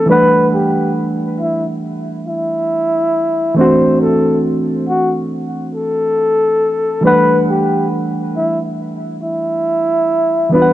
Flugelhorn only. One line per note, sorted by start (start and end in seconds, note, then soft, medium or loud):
0.10 0.49 B4 loud
0.54 0.92 G4 medium
1.41 1.64 E4 medium
2.28 3.53 E4 medium
3.58 3.96 C5 medium
4.01 4.40 A4 medium
4.89 5.12 F#4 medium
5.75 7.01 A4 medium
7.06 7.44 B4 loud
7.50 7.88 G4 medium
8.37 8.60 E4 medium
9.23 10.49 E4 medium
10.53 10.73 B4 loud